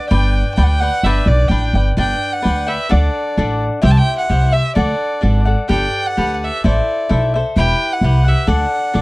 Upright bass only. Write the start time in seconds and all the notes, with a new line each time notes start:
0.11 G1
0.58 D2
1.03 G1
1.26 B1
1.50 A1
1.73 G1
1.97 G1
2.45 D2
2.92 D2
3.38 A1
3.83 C2
4.30 C2
4.76 D2
5.23 G#1
5.70 G1
6.18 D2
6.64 A1
7.11 B1
7.56 E1
8.01 C2
8.48 D2
8.95 A1